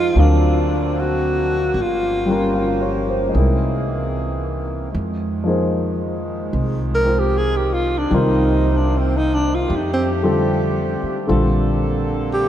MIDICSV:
0, 0, Header, 1, 6, 480
1, 0, Start_track
1, 0, Key_signature, -4, "minor"
1, 0, Tempo, 793651
1, 1051, Time_signature, 4, 2, 24, 8
1, 7552, End_track
2, 0, Start_track
2, 0, Title_t, "Alto saxophone"
2, 0, Program_c, 0, 65
2, 0, Note_on_c, 0, 65, 95
2, 118, Note_on_c, 0, 62, 74
2, 128, Note_off_c, 0, 65, 0
2, 599, Note_on_c, 0, 66, 80
2, 608, Note_off_c, 0, 62, 0
2, 1099, Note_on_c, 0, 65, 77
2, 1108, Note_off_c, 0, 66, 0
2, 1879, Note_off_c, 0, 65, 0
2, 4202, Note_on_c, 0, 70, 74
2, 4350, Note_on_c, 0, 67, 65
2, 4359, Note_off_c, 0, 70, 0
2, 4460, Note_on_c, 0, 68, 78
2, 4469, Note_off_c, 0, 67, 0
2, 4573, Note_on_c, 0, 67, 66
2, 4582, Note_off_c, 0, 68, 0
2, 4674, Note_on_c, 0, 65, 70
2, 4683, Note_off_c, 0, 67, 0
2, 4826, Note_on_c, 0, 62, 62
2, 4836, Note_off_c, 0, 65, 0
2, 4930, Note_on_c, 0, 63, 74
2, 4939, Note_off_c, 0, 62, 0
2, 5302, Note_on_c, 0, 62, 64
2, 5311, Note_off_c, 0, 63, 0
2, 5428, Note_on_c, 0, 60, 68
2, 5437, Note_off_c, 0, 62, 0
2, 5543, Note_on_c, 0, 63, 80
2, 5552, Note_off_c, 0, 60, 0
2, 5652, Note_on_c, 0, 62, 70
2, 5661, Note_off_c, 0, 63, 0
2, 5774, Note_on_c, 0, 65, 78
2, 5783, Note_off_c, 0, 62, 0
2, 5901, Note_on_c, 0, 63, 65
2, 5910, Note_off_c, 0, 65, 0
2, 6005, Note_off_c, 0, 63, 0
2, 6009, Note_on_c, 0, 60, 66
2, 6108, Note_off_c, 0, 60, 0
2, 7459, Note_on_c, 0, 67, 69
2, 7552, Note_off_c, 0, 67, 0
2, 7552, End_track
3, 0, Start_track
3, 0, Title_t, "Grand piano"
3, 0, Program_c, 1, 0
3, 0, Control_c, 1, 64, 127
3, 0, Note_on_c, 1, 53, 49
3, 0, Note_on_c, 1, 58, 46
3, 0, Note_on_c, 1, 63, 45
3, 0, Note_on_c, 1, 68, 46
3, 0, Note_on_c, 1, 72, 56
3, 0, Note_on_c, 1, 75, 38
3, 0, Note_on_c, 1, 77, 40
3, 75, Note_off_c, 1, 53, 0
3, 84, Note_off_c, 1, 58, 0
3, 88, Note_on_c, 1, 54, 48
3, 93, Note_on_c, 1, 60, 44
3, 95, Note_off_c, 1, 63, 0
3, 99, Note_on_c, 1, 62, 44
3, 100, Note_off_c, 1, 77, 0
3, 100, Control_c, 1, 64, 0
3, 101, Note_off_c, 1, 68, 0
3, 109, Note_off_c, 1, 72, 0
3, 113, Note_on_c, 1, 77, 43
3, 118, Note_on_c, 1, 70, 50
3, 195, Note_off_c, 1, 75, 0
3, 207, Control_c, 1, 64, 127
3, 1049, Note_off_c, 1, 54, 0
3, 1051, Note_off_c, 1, 60, 0
3, 1054, Note_off_c, 1, 62, 0
3, 1057, Control_c, 1, 64, 0
3, 1061, Note_off_c, 1, 77, 0
3, 1064, Note_off_c, 1, 70, 0
3, 1184, Control_c, 1, 64, 127
3, 1366, Note_on_c, 1, 55, 46
3, 1375, Note_on_c, 1, 58, 44
3, 1382, Note_on_c, 1, 61, 42
3, 1394, Note_on_c, 1, 65, 43
3, 1398, Note_on_c, 1, 70, 53
3, 1536, Note_on_c, 1, 77, 37
3, 1704, Note_on_c, 1, 73, 39
3, 1835, Note_off_c, 1, 77, 0
3, 1869, Note_on_c, 1, 72, 41
3, 1948, Note_off_c, 1, 73, 0
3, 1991, Note_on_c, 1, 56, 40
3, 2004, Note_on_c, 1, 60, 36
3, 2008, Note_off_c, 1, 55, 0
3, 2013, Note_off_c, 1, 58, 0
3, 2015, Note_on_c, 1, 63, 36
3, 2016, Note_off_c, 1, 61, 0
3, 2019, Control_c, 1, 64, 0
3, 2022, Note_off_c, 1, 65, 0
3, 2024, Note_off_c, 1, 70, 0
3, 2036, Note_on_c, 1, 64, 38
3, 2052, Note_on_c, 1, 70, 43
3, 2111, Note_off_c, 1, 72, 0
3, 2141, Control_c, 1, 64, 127
3, 2969, Note_off_c, 1, 56, 0
3, 2976, Note_off_c, 1, 60, 0
3, 2981, Note_off_c, 1, 63, 0
3, 2988, Control_c, 1, 64, 0
3, 2992, Note_off_c, 1, 64, 0
3, 3000, Note_off_c, 1, 70, 0
3, 3095, Control_c, 1, 64, 127
3, 3289, Note_on_c, 1, 53, 48
3, 3303, Note_on_c, 1, 58, 43
3, 3306, Note_on_c, 1, 63, 44
3, 3308, Note_on_c, 1, 68, 41
3, 3321, Note_on_c, 1, 72, 50
3, 4259, Note_on_c, 1, 60, 37
3, 4270, Note_off_c, 1, 72, 0
3, 4273, Note_on_c, 1, 65, 35
3, 4275, Note_on_c, 1, 70, 33
3, 4279, Note_on_c, 1, 72, 39
3, 4893, Note_off_c, 1, 53, 0
3, 4898, Note_off_c, 1, 60, 0
3, 4900, Note_off_c, 1, 58, 0
3, 4902, Note_off_c, 1, 63, 0
3, 4903, Note_off_c, 1, 68, 0
3, 4903, Note_on_c, 1, 51, 52
3, 4905, Note_off_c, 1, 65, 0
3, 4906, Note_off_c, 1, 70, 0
3, 4906, Note_on_c, 1, 55, 46
3, 4908, Note_off_c, 1, 72, 0
3, 4910, Control_c, 1, 64, 0
3, 4914, Note_on_c, 1, 60, 46
3, 4922, Note_on_c, 1, 65, 45
3, 4925, Note_on_c, 1, 70, 59
3, 5005, Control_c, 1, 64, 127
3, 5859, Note_off_c, 1, 51, 0
3, 5861, Note_off_c, 1, 55, 0
3, 5864, Note_off_c, 1, 60, 0
3, 5866, Control_c, 1, 64, 0
3, 5869, Note_off_c, 1, 65, 0
3, 5870, Note_off_c, 1, 70, 0
3, 5957, Control_c, 1, 64, 127
3, 6186, Note_on_c, 1, 50, 50
3, 6189, Note_on_c, 1, 55, 44
3, 6189, Note_on_c, 1, 60, 45
3, 6189, Note_on_c, 1, 65, 45
3, 6200, Note_on_c, 1, 69, 55
3, 6809, Note_off_c, 1, 50, 0
3, 6811, Note_off_c, 1, 60, 0
3, 6816, Note_off_c, 1, 65, 0
3, 6817, Note_off_c, 1, 55, 0
3, 6818, Note_on_c, 1, 50, 50
3, 6819, Note_off_c, 1, 69, 0
3, 6820, Note_on_c, 1, 60, 44
3, 6823, Control_c, 1, 64, 0
3, 6825, Note_on_c, 1, 65, 46
3, 6826, Note_on_c, 1, 55, 44
3, 6829, Note_on_c, 1, 69, 52
3, 6919, Control_c, 1, 64, 127
3, 7552, Note_off_c, 1, 50, 0
3, 7552, Note_off_c, 1, 55, 0
3, 7552, Note_off_c, 1, 60, 0
3, 7552, Note_off_c, 1, 65, 0
3, 7552, Note_off_c, 1, 69, 0
3, 7552, End_track
4, 0, Start_track
4, 0, Title_t, "Saxophone section"
4, 0, Program_c, 2, 65
4, 0, Note_on_c, 2, 53, 59
4, 0, Note_on_c, 2, 56, 53
4, 0, Note_on_c, 2, 63, 54
4, 85, Note_off_c, 2, 53, 0
4, 88, Note_off_c, 2, 63, 0
4, 91, Note_off_c, 2, 56, 0
4, 94, Note_on_c, 2, 50, 58
4, 94, Note_on_c, 2, 60, 54
4, 98, Note_on_c, 2, 58, 55
4, 1042, Note_off_c, 2, 50, 0
4, 1042, Note_off_c, 2, 60, 0
4, 1065, Note_on_c, 2, 53, 56
4, 1069, Note_on_c, 2, 67, 65
4, 1070, Note_on_c, 2, 61, 50
4, 2007, Note_on_c, 2, 60, 54
4, 2010, Note_off_c, 2, 53, 0
4, 2011, Note_on_c, 2, 68, 59
4, 2012, Note_off_c, 2, 61, 0
4, 2012, Note_off_c, 2, 67, 0
4, 2012, Note_on_c, 2, 52, 57
4, 2959, Note_off_c, 2, 58, 0
4, 2967, Note_off_c, 2, 60, 0
4, 2969, Note_on_c, 2, 51, 56
4, 2970, Note_off_c, 2, 52, 0
4, 2970, Note_off_c, 2, 68, 0
4, 2973, Note_on_c, 2, 53, 59
4, 2975, Note_on_c, 2, 56, 53
4, 4798, Note_off_c, 2, 53, 0
4, 4798, Note_off_c, 2, 56, 0
4, 4901, Note_on_c, 2, 58, 58
4, 4910, Note_on_c, 2, 48, 61
4, 4911, Note_on_c, 2, 60, 53
4, 5829, Note_off_c, 2, 51, 0
4, 5845, Note_on_c, 2, 57, 59
4, 5846, Note_on_c, 2, 62, 59
4, 5848, Note_off_c, 2, 58, 0
4, 5852, Note_on_c, 2, 67, 70
4, 5853, Note_off_c, 2, 48, 0
4, 5853, Note_off_c, 2, 60, 0
4, 6798, Note_off_c, 2, 57, 0
4, 6798, Note_off_c, 2, 62, 0
4, 6801, Note_off_c, 2, 67, 0
4, 6841, Note_on_c, 2, 58, 60
4, 6843, Note_on_c, 2, 60, 57
4, 6843, Note_on_c, 2, 69, 66
4, 6848, Note_on_c, 2, 50, 65
4, 7552, Note_off_c, 2, 50, 0
4, 7552, Note_off_c, 2, 58, 0
4, 7552, Note_off_c, 2, 60, 0
4, 7552, Note_off_c, 2, 69, 0
4, 7552, End_track
5, 0, Start_track
5, 0, Title_t, "Upright bass"
5, 0, Program_c, 3, 32
5, 0, Note_on_c, 3, 41, 70
5, 68, Note_off_c, 3, 41, 0
5, 97, Note_on_c, 3, 38, 70
5, 1029, Note_off_c, 3, 38, 0
5, 1054, Note_on_c, 3, 31, 69
5, 1989, Note_off_c, 3, 31, 0
5, 2024, Note_on_c, 3, 36, 65
5, 2962, Note_off_c, 3, 36, 0
5, 2991, Note_on_c, 3, 41, 69
5, 3924, Note_off_c, 3, 41, 0
5, 3950, Note_on_c, 3, 36, 66
5, 4881, Note_off_c, 3, 36, 0
5, 4905, Note_on_c, 3, 36, 71
5, 5836, Note_off_c, 3, 36, 0
5, 5865, Note_on_c, 3, 41, 69
5, 6637, Note_off_c, 3, 41, 0
5, 6830, Note_on_c, 3, 34, 74
5, 7552, Note_off_c, 3, 34, 0
5, 7552, End_track
6, 0, Start_track
6, 0, Title_t, "Muted upright bass strokes"
6, 6670, Note_on_c, 9, 29, 32
6, 6731, Note_off_c, 9, 29, 0
6, 7552, End_track
0, 0, End_of_file